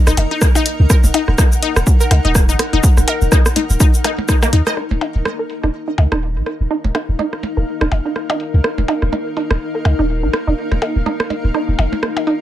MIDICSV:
0, 0, Header, 1, 7, 480
1, 0, Start_track
1, 0, Key_signature, -6, "minor"
1, 0, Tempo, 483871
1, 892, Time_signature, 4, 2, 24, 8
1, 12311, End_track
2, 0, Start_track
2, 0, Title_t, "Synth texture"
2, 0, Program_c, 0, 99
2, 0, Note_on_c, 0, 63, 89
2, 0, Note_on_c, 0, 75, 91
2, 891, Note_on_c, 0, 78, 92
2, 919, Note_off_c, 0, 75, 0
2, 4743, Note_off_c, 0, 63, 0
2, 4759, Note_off_c, 0, 78, 0
2, 12311, End_track
3, 0, Start_track
3, 0, Title_t, "Ambient pad"
3, 0, Program_c, 1, 92
3, 0, Note_on_c, 1, 63, 83
3, 0, Note_on_c, 1, 70, 77
3, 0, Note_on_c, 1, 82, 76
3, 4720, Note_off_c, 1, 63, 0
3, 4732, Note_off_c, 1, 70, 0
3, 4732, Note_on_c, 1, 63, 89
3, 4760, Note_off_c, 1, 82, 0
3, 5134, Note_on_c, 1, 70, 78
3, 5232, Note_on_c, 1, 77, 72
3, 12311, Note_off_c, 1, 63, 0
3, 12311, Note_off_c, 1, 70, 0
3, 12311, Note_off_c, 1, 77, 0
3, 12311, End_track
4, 0, Start_track
4, 0, Title_t, "Synth pluck"
4, 0, Program_c, 2, 84
4, 70, Note_on_c, 2, 63, 98
4, 98, Note_off_c, 2, 63, 0
4, 310, Note_on_c, 2, 63, 78
4, 330, Note_off_c, 2, 63, 0
4, 550, Note_on_c, 2, 63, 107
4, 592, Note_off_c, 2, 63, 0
4, 892, Note_on_c, 2, 70, 87
4, 929, Note_off_c, 2, 70, 0
4, 1132, Note_on_c, 2, 63, 101
4, 1169, Note_off_c, 2, 63, 0
4, 1372, Note_on_c, 2, 63, 84
4, 1394, Note_off_c, 2, 63, 0
4, 1612, Note_on_c, 2, 63, 102
4, 1668, Note_off_c, 2, 63, 0
4, 1989, Note_on_c, 2, 70, 76
4, 2017, Note_off_c, 2, 70, 0
4, 2229, Note_on_c, 2, 63, 99
4, 2257, Note_off_c, 2, 63, 0
4, 2469, Note_on_c, 2, 63, 81
4, 2489, Note_off_c, 2, 63, 0
4, 2709, Note_on_c, 2, 63, 100
4, 2751, Note_off_c, 2, 63, 0
4, 3052, Note_on_c, 2, 70, 80
4, 3089, Note_off_c, 2, 70, 0
4, 3292, Note_on_c, 2, 63, 102
4, 3329, Note_off_c, 2, 63, 0
4, 3532, Note_on_c, 2, 63, 78
4, 3554, Note_off_c, 2, 63, 0
4, 3772, Note_on_c, 2, 63, 96
4, 3828, Note_off_c, 2, 63, 0
4, 4012, Note_on_c, 2, 63, 105
4, 4068, Note_off_c, 2, 63, 0
4, 4252, Note_on_c, 2, 63, 108
4, 4308, Note_off_c, 2, 63, 0
4, 4389, Note_on_c, 2, 58, 78
4, 4417, Note_off_c, 2, 58, 0
4, 4492, Note_on_c, 2, 63, 107
4, 4514, Note_off_c, 2, 63, 0
4, 4629, Note_on_c, 2, 75, 97
4, 4671, Note_off_c, 2, 75, 0
4, 4732, Note_on_c, 2, 63, 78
4, 4754, Note_off_c, 2, 63, 0
4, 4972, Note_on_c, 2, 63, 94
4, 5028, Note_off_c, 2, 63, 0
4, 5349, Note_on_c, 2, 70, 73
4, 5377, Note_off_c, 2, 70, 0
4, 5590, Note_on_c, 2, 63, 96
4, 5617, Note_off_c, 2, 63, 0
4, 5829, Note_on_c, 2, 63, 70
4, 5849, Note_off_c, 2, 63, 0
4, 6069, Note_on_c, 2, 63, 98
4, 6111, Note_off_c, 2, 63, 0
4, 6412, Note_on_c, 2, 70, 72
4, 6449, Note_off_c, 2, 70, 0
4, 6652, Note_on_c, 2, 63, 97
4, 6689, Note_off_c, 2, 63, 0
4, 6892, Note_on_c, 2, 63, 69
4, 6914, Note_off_c, 2, 63, 0
4, 7132, Note_on_c, 2, 63, 98
4, 7188, Note_off_c, 2, 63, 0
4, 7510, Note_on_c, 2, 70, 75
4, 7537, Note_off_c, 2, 70, 0
4, 7750, Note_on_c, 2, 63, 91
4, 7778, Note_off_c, 2, 63, 0
4, 7991, Note_on_c, 2, 63, 76
4, 8011, Note_off_c, 2, 63, 0
4, 8230, Note_on_c, 2, 63, 103
4, 8272, Note_off_c, 2, 63, 0
4, 8573, Note_on_c, 2, 70, 81
4, 8610, Note_off_c, 2, 70, 0
4, 8813, Note_on_c, 2, 63, 95
4, 8850, Note_off_c, 2, 63, 0
4, 9053, Note_on_c, 2, 63, 83
4, 9075, Note_off_c, 2, 63, 0
4, 9292, Note_on_c, 2, 63, 94
4, 9348, Note_off_c, 2, 63, 0
4, 9670, Note_on_c, 2, 70, 70
4, 9698, Note_off_c, 2, 70, 0
4, 9910, Note_on_c, 2, 63, 100
4, 9938, Note_off_c, 2, 63, 0
4, 10150, Note_on_c, 2, 63, 76
4, 10170, Note_off_c, 2, 63, 0
4, 10390, Note_on_c, 2, 63, 93
4, 10431, Note_off_c, 2, 63, 0
4, 10732, Note_on_c, 2, 70, 72
4, 10770, Note_off_c, 2, 70, 0
4, 10972, Note_on_c, 2, 63, 100
4, 11009, Note_off_c, 2, 63, 0
4, 11212, Note_on_c, 2, 63, 72
4, 11234, Note_off_c, 2, 63, 0
4, 11452, Note_on_c, 2, 63, 97
4, 11508, Note_off_c, 2, 63, 0
4, 11932, Note_on_c, 2, 58, 84
4, 11954, Note_off_c, 2, 58, 0
4, 12172, Note_on_c, 2, 63, 97
4, 12209, Note_off_c, 2, 63, 0
4, 12311, End_track
5, 0, Start_track
5, 0, Title_t, "Sub bass"
5, 0, Program_c, 3, 38
5, 69, Note_on_c, 3, 27, 96
5, 133, Note_off_c, 3, 27, 0
5, 171, Note_on_c, 3, 29, 95
5, 257, Note_off_c, 3, 29, 0
5, 789, Note_on_c, 3, 37, 92
5, 853, Note_off_c, 3, 37, 0
5, 1029, Note_on_c, 3, 27, 94
5, 1093, Note_off_c, 3, 27, 0
5, 1269, Note_on_c, 3, 27, 110
5, 1333, Note_off_c, 3, 27, 0
5, 1749, Note_on_c, 3, 27, 105
5, 1813, Note_off_c, 3, 27, 0
5, 2092, Note_on_c, 3, 37, 105
5, 2177, Note_off_c, 3, 37, 0
5, 2230, Note_on_c, 3, 27, 98
5, 2470, Note_on_c, 3, 34, 100
5, 2484, Note_off_c, 3, 27, 0
5, 2533, Note_off_c, 3, 34, 0
5, 2710, Note_on_c, 3, 27, 84
5, 2773, Note_off_c, 3, 27, 0
5, 2950, Note_on_c, 3, 27, 95
5, 3013, Note_off_c, 3, 27, 0
5, 3189, Note_on_c, 3, 27, 116
5, 3253, Note_off_c, 3, 27, 0
5, 3669, Note_on_c, 3, 27, 97
5, 3733, Note_off_c, 3, 27, 0
5, 4492, Note_on_c, 3, 39, 102
5, 4577, Note_off_c, 3, 39, 0
5, 4869, Note_on_c, 3, 27, 84
5, 4933, Note_off_c, 3, 27, 0
5, 5110, Note_on_c, 3, 27, 102
5, 5173, Note_off_c, 3, 27, 0
5, 5590, Note_on_c, 3, 27, 93
5, 5653, Note_off_c, 3, 27, 0
5, 5932, Note_on_c, 3, 37, 97
5, 6017, Note_off_c, 3, 37, 0
5, 6069, Note_on_c, 3, 27, 92
5, 6309, Note_on_c, 3, 34, 90
5, 6324, Note_off_c, 3, 27, 0
5, 6373, Note_off_c, 3, 34, 0
5, 6549, Note_on_c, 3, 27, 79
5, 6613, Note_off_c, 3, 27, 0
5, 6790, Note_on_c, 3, 27, 86
5, 6853, Note_off_c, 3, 27, 0
5, 7029, Note_on_c, 3, 27, 100
5, 7093, Note_off_c, 3, 27, 0
5, 7509, Note_on_c, 3, 27, 93
5, 7573, Note_off_c, 3, 27, 0
5, 7749, Note_on_c, 3, 27, 85
5, 7813, Note_off_c, 3, 27, 0
5, 7852, Note_on_c, 3, 29, 91
5, 7937, Note_off_c, 3, 29, 0
5, 8469, Note_on_c, 3, 37, 87
5, 8533, Note_off_c, 3, 37, 0
5, 8710, Note_on_c, 3, 27, 88
5, 8773, Note_off_c, 3, 27, 0
5, 8950, Note_on_c, 3, 27, 97
5, 9013, Note_off_c, 3, 27, 0
5, 9430, Note_on_c, 3, 27, 99
5, 9493, Note_off_c, 3, 27, 0
5, 9773, Note_on_c, 3, 37, 100
5, 9857, Note_off_c, 3, 37, 0
5, 9910, Note_on_c, 3, 27, 85
5, 10150, Note_on_c, 3, 34, 86
5, 10165, Note_off_c, 3, 27, 0
5, 10213, Note_off_c, 3, 34, 0
5, 10390, Note_on_c, 3, 27, 83
5, 10453, Note_off_c, 3, 27, 0
5, 10630, Note_on_c, 3, 27, 94
5, 10693, Note_off_c, 3, 27, 0
5, 10870, Note_on_c, 3, 27, 97
5, 10933, Note_off_c, 3, 27, 0
5, 11350, Note_on_c, 3, 27, 98
5, 11413, Note_off_c, 3, 27, 0
5, 11590, Note_on_c, 3, 27, 87
5, 11653, Note_off_c, 3, 27, 0
5, 11692, Note_on_c, 3, 29, 90
5, 11777, Note_off_c, 3, 29, 0
5, 12311, End_track
6, 0, Start_track
6, 0, Title_t, "Percussion blips"
6, 172, Note_on_c, 9, 56, 86
6, 271, Note_off_c, 9, 56, 0
6, 549, Note_on_c, 9, 56, 91
6, 648, Note_off_c, 9, 56, 0
6, 1030, Note_on_c, 9, 63, 55
6, 1129, Note_off_c, 9, 63, 0
6, 1131, Note_on_c, 9, 56, 83
6, 1231, Note_off_c, 9, 56, 0
6, 1372, Note_on_c, 9, 63, 51
6, 1471, Note_off_c, 9, 63, 0
6, 2092, Note_on_c, 9, 56, 85
6, 2192, Note_off_c, 9, 56, 0
6, 2950, Note_on_c, 9, 63, 59
6, 3049, Note_off_c, 9, 63, 0
6, 3052, Note_on_c, 9, 56, 88
6, 3152, Note_off_c, 9, 56, 0
6, 3292, Note_on_c, 9, 63, 50
6, 3392, Note_off_c, 9, 63, 0
6, 3533, Note_on_c, 9, 63, 50
6, 3632, Note_off_c, 9, 63, 0
6, 4012, Note_on_c, 9, 56, 93
6, 4112, Note_off_c, 9, 56, 0
6, 4150, Note_on_c, 9, 63, 55
6, 4249, Note_off_c, 9, 63, 0
6, 4390, Note_on_c, 9, 56, 97
6, 4489, Note_off_c, 9, 56, 0
6, 4871, Note_on_c, 9, 63, 53
6, 4970, Note_off_c, 9, 63, 0
6, 4973, Note_on_c, 9, 56, 81
6, 5072, Note_off_c, 9, 56, 0
6, 5212, Note_on_c, 9, 63, 46
6, 5311, Note_off_c, 9, 63, 0
6, 5932, Note_on_c, 9, 56, 84
6, 6031, Note_off_c, 9, 56, 0
6, 6789, Note_on_c, 9, 63, 52
6, 6889, Note_off_c, 9, 63, 0
6, 6892, Note_on_c, 9, 56, 84
6, 6991, Note_off_c, 9, 56, 0
6, 7132, Note_on_c, 9, 63, 50
6, 7232, Note_off_c, 9, 63, 0
6, 7373, Note_on_c, 9, 63, 47
6, 7472, Note_off_c, 9, 63, 0
6, 7852, Note_on_c, 9, 56, 82
6, 7951, Note_off_c, 9, 56, 0
6, 8230, Note_on_c, 9, 56, 89
6, 8329, Note_off_c, 9, 56, 0
6, 8710, Note_on_c, 9, 63, 54
6, 8809, Note_off_c, 9, 63, 0
6, 8812, Note_on_c, 9, 56, 77
6, 8911, Note_off_c, 9, 56, 0
6, 9052, Note_on_c, 9, 63, 49
6, 9152, Note_off_c, 9, 63, 0
6, 9772, Note_on_c, 9, 56, 80
6, 9872, Note_off_c, 9, 56, 0
6, 10630, Note_on_c, 9, 63, 54
6, 10729, Note_off_c, 9, 63, 0
6, 10732, Note_on_c, 9, 56, 76
6, 10831, Note_off_c, 9, 56, 0
6, 10972, Note_on_c, 9, 63, 47
6, 11071, Note_off_c, 9, 63, 0
6, 11212, Note_on_c, 9, 63, 48
6, 11311, Note_off_c, 9, 63, 0
6, 11692, Note_on_c, 9, 56, 77
6, 11791, Note_off_c, 9, 56, 0
6, 11829, Note_on_c, 9, 63, 50
6, 11929, Note_off_c, 9, 63, 0
6, 12068, Note_on_c, 9, 56, 88
6, 12168, Note_off_c, 9, 56, 0
6, 12311, End_track
7, 0, Start_track
7, 0, Title_t, "Drums"
7, 69, Note_on_c, 9, 37, 82
7, 70, Note_on_c, 9, 69, 41
7, 169, Note_off_c, 9, 37, 0
7, 169, Note_off_c, 9, 69, 0
7, 172, Note_on_c, 9, 42, 90
7, 271, Note_off_c, 9, 42, 0
7, 412, Note_on_c, 9, 36, 107
7, 412, Note_on_c, 9, 37, 91
7, 412, Note_on_c, 9, 69, 66
7, 511, Note_off_c, 9, 36, 0
7, 511, Note_off_c, 9, 37, 0
7, 511, Note_off_c, 9, 69, 0
7, 550, Note_on_c, 9, 69, 44
7, 649, Note_off_c, 9, 69, 0
7, 652, Note_on_c, 9, 42, 93
7, 751, Note_off_c, 9, 42, 0
7, 892, Note_on_c, 9, 36, 114
7, 892, Note_on_c, 9, 37, 82
7, 892, Note_on_c, 9, 69, 69
7, 991, Note_off_c, 9, 36, 0
7, 991, Note_off_c, 9, 37, 0
7, 991, Note_off_c, 9, 69, 0
7, 1030, Note_on_c, 9, 69, 45
7, 1129, Note_off_c, 9, 69, 0
7, 1132, Note_on_c, 9, 42, 88
7, 1231, Note_off_c, 9, 42, 0
7, 1269, Note_on_c, 9, 37, 40
7, 1369, Note_off_c, 9, 37, 0
7, 1372, Note_on_c, 9, 36, 109
7, 1372, Note_on_c, 9, 37, 93
7, 1372, Note_on_c, 9, 69, 63
7, 1471, Note_off_c, 9, 36, 0
7, 1472, Note_off_c, 9, 37, 0
7, 1472, Note_off_c, 9, 69, 0
7, 1510, Note_on_c, 9, 69, 42
7, 1609, Note_off_c, 9, 69, 0
7, 1612, Note_on_c, 9, 42, 90
7, 1711, Note_off_c, 9, 42, 0
7, 1750, Note_on_c, 9, 37, 81
7, 1750, Note_on_c, 9, 69, 30
7, 1849, Note_off_c, 9, 37, 0
7, 1849, Note_off_c, 9, 69, 0
7, 1852, Note_on_c, 9, 36, 116
7, 1852, Note_on_c, 9, 69, 69
7, 1951, Note_off_c, 9, 36, 0
7, 1951, Note_off_c, 9, 69, 0
7, 1990, Note_on_c, 9, 69, 42
7, 2089, Note_off_c, 9, 69, 0
7, 2092, Note_on_c, 9, 37, 42
7, 2092, Note_on_c, 9, 42, 86
7, 2192, Note_off_c, 9, 37, 0
7, 2192, Note_off_c, 9, 42, 0
7, 2332, Note_on_c, 9, 36, 105
7, 2332, Note_on_c, 9, 37, 88
7, 2332, Note_on_c, 9, 69, 69
7, 2431, Note_off_c, 9, 36, 0
7, 2432, Note_off_c, 9, 37, 0
7, 2432, Note_off_c, 9, 69, 0
7, 2470, Note_on_c, 9, 69, 45
7, 2569, Note_off_c, 9, 69, 0
7, 2572, Note_on_c, 9, 42, 87
7, 2573, Note_on_c, 9, 37, 79
7, 2671, Note_off_c, 9, 42, 0
7, 2672, Note_off_c, 9, 37, 0
7, 2812, Note_on_c, 9, 36, 119
7, 2812, Note_on_c, 9, 69, 72
7, 2911, Note_off_c, 9, 36, 0
7, 2911, Note_off_c, 9, 69, 0
7, 2950, Note_on_c, 9, 37, 43
7, 2950, Note_on_c, 9, 69, 44
7, 3049, Note_off_c, 9, 37, 0
7, 3049, Note_off_c, 9, 69, 0
7, 3052, Note_on_c, 9, 42, 92
7, 3151, Note_off_c, 9, 42, 0
7, 3189, Note_on_c, 9, 69, 32
7, 3289, Note_off_c, 9, 69, 0
7, 3292, Note_on_c, 9, 36, 102
7, 3292, Note_on_c, 9, 37, 89
7, 3292, Note_on_c, 9, 69, 65
7, 3391, Note_off_c, 9, 36, 0
7, 3391, Note_off_c, 9, 37, 0
7, 3391, Note_off_c, 9, 69, 0
7, 3429, Note_on_c, 9, 69, 47
7, 3430, Note_on_c, 9, 37, 89
7, 3529, Note_off_c, 9, 69, 0
7, 3530, Note_off_c, 9, 37, 0
7, 3532, Note_on_c, 9, 42, 93
7, 3631, Note_off_c, 9, 42, 0
7, 3669, Note_on_c, 9, 69, 32
7, 3768, Note_off_c, 9, 69, 0
7, 3772, Note_on_c, 9, 36, 111
7, 3772, Note_on_c, 9, 69, 74
7, 3773, Note_on_c, 9, 37, 41
7, 3871, Note_off_c, 9, 36, 0
7, 3871, Note_off_c, 9, 69, 0
7, 3872, Note_off_c, 9, 37, 0
7, 3910, Note_on_c, 9, 69, 44
7, 4009, Note_off_c, 9, 69, 0
7, 4012, Note_on_c, 9, 37, 65
7, 4012, Note_on_c, 9, 42, 88
7, 4111, Note_off_c, 9, 37, 0
7, 4111, Note_off_c, 9, 42, 0
7, 4252, Note_on_c, 9, 36, 105
7, 4252, Note_on_c, 9, 37, 81
7, 4252, Note_on_c, 9, 69, 65
7, 4253, Note_off_c, 9, 37, 0
7, 4253, Note_on_c, 9, 37, 85
7, 4351, Note_off_c, 9, 36, 0
7, 4351, Note_off_c, 9, 69, 0
7, 4352, Note_off_c, 9, 37, 0
7, 4390, Note_on_c, 9, 37, 74
7, 4390, Note_on_c, 9, 69, 45
7, 4489, Note_off_c, 9, 37, 0
7, 4489, Note_off_c, 9, 69, 0
7, 4492, Note_on_c, 9, 42, 89
7, 4591, Note_off_c, 9, 42, 0
7, 4630, Note_on_c, 9, 37, 45
7, 4630, Note_on_c, 9, 69, 30
7, 4729, Note_off_c, 9, 37, 0
7, 4729, Note_off_c, 9, 69, 0
7, 4733, Note_on_c, 9, 37, 35
7, 4832, Note_off_c, 9, 37, 0
7, 4972, Note_on_c, 9, 42, 86
7, 5072, Note_off_c, 9, 42, 0
7, 5212, Note_on_c, 9, 37, 72
7, 5311, Note_off_c, 9, 37, 0
7, 5452, Note_on_c, 9, 42, 81
7, 5551, Note_off_c, 9, 42, 0
7, 5590, Note_on_c, 9, 37, 36
7, 5689, Note_off_c, 9, 37, 0
7, 5932, Note_on_c, 9, 42, 83
7, 6031, Note_off_c, 9, 42, 0
7, 6069, Note_on_c, 9, 37, 79
7, 6169, Note_off_c, 9, 37, 0
7, 6412, Note_on_c, 9, 37, 35
7, 6412, Note_on_c, 9, 42, 78
7, 6511, Note_off_c, 9, 37, 0
7, 6511, Note_off_c, 9, 42, 0
7, 6892, Note_on_c, 9, 37, 72
7, 6892, Note_on_c, 9, 42, 87
7, 6991, Note_off_c, 9, 37, 0
7, 6991, Note_off_c, 9, 42, 0
7, 7270, Note_on_c, 9, 37, 35
7, 7369, Note_off_c, 9, 37, 0
7, 7372, Note_on_c, 9, 42, 86
7, 7471, Note_off_c, 9, 42, 0
7, 7750, Note_on_c, 9, 37, 71
7, 7849, Note_off_c, 9, 37, 0
7, 7852, Note_on_c, 9, 42, 86
7, 7951, Note_off_c, 9, 42, 0
7, 8093, Note_on_c, 9, 37, 38
7, 8192, Note_off_c, 9, 37, 0
7, 8332, Note_on_c, 9, 42, 90
7, 8432, Note_off_c, 9, 42, 0
7, 8573, Note_on_c, 9, 37, 70
7, 8672, Note_off_c, 9, 37, 0
7, 8812, Note_on_c, 9, 42, 92
7, 8912, Note_off_c, 9, 42, 0
7, 8950, Note_on_c, 9, 37, 33
7, 9049, Note_off_c, 9, 37, 0
7, 9292, Note_on_c, 9, 42, 91
7, 9391, Note_off_c, 9, 42, 0
7, 9430, Note_on_c, 9, 37, 67
7, 9529, Note_off_c, 9, 37, 0
7, 9772, Note_on_c, 9, 37, 37
7, 9772, Note_on_c, 9, 42, 89
7, 9871, Note_off_c, 9, 42, 0
7, 9872, Note_off_c, 9, 37, 0
7, 10252, Note_on_c, 9, 37, 71
7, 10252, Note_on_c, 9, 42, 88
7, 10351, Note_off_c, 9, 37, 0
7, 10351, Note_off_c, 9, 42, 0
7, 10630, Note_on_c, 9, 37, 33
7, 10729, Note_off_c, 9, 37, 0
7, 10732, Note_on_c, 9, 42, 88
7, 10831, Note_off_c, 9, 42, 0
7, 11110, Note_on_c, 9, 37, 68
7, 11209, Note_off_c, 9, 37, 0
7, 11212, Note_on_c, 9, 42, 89
7, 11311, Note_off_c, 9, 42, 0
7, 11452, Note_on_c, 9, 37, 34
7, 11551, Note_off_c, 9, 37, 0
7, 11692, Note_on_c, 9, 42, 86
7, 11791, Note_off_c, 9, 42, 0
7, 11931, Note_on_c, 9, 37, 72
7, 12030, Note_off_c, 9, 37, 0
7, 12172, Note_on_c, 9, 42, 82
7, 12271, Note_off_c, 9, 42, 0
7, 12311, End_track
0, 0, End_of_file